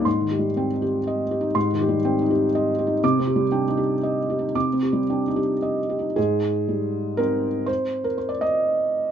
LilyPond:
\new Staff \with { instrumentName = "Felt piano" } { \time 3/4 \key aes \lydian \tempo 4 = 120 << { c'''8 g'8 g''8 g'8 ees''8 g'8 | c'''8 g'8 g''8 g'8 ees''8 g'8 | d'''8 g'8 g''8 g'8 ees''8 g'8 | d'''8 g'8 g''8 g'8 ees''8 g'8 |
aes'2 bes'4 | c''8. bes'16 c''16 d''16 ees''4. | } \\ { \tuplet 3/2 { aes,8 ees8 g8 c'8 ees'4 r4 ees'8 } | \tuplet 3/2 { aes,8 ees8 g8 c'8 ees'4 r4 ees'8 } | \tuplet 3/2 { c8 c'8 g8 d'8 ees'4 r4 ees'8 } | \tuplet 3/2 { c8 c'8 g8 d'8 ees'4 r4 ees'8 } |
aes,4 g4 <c' ees'>4~ | <c' ees'>2. | } >> }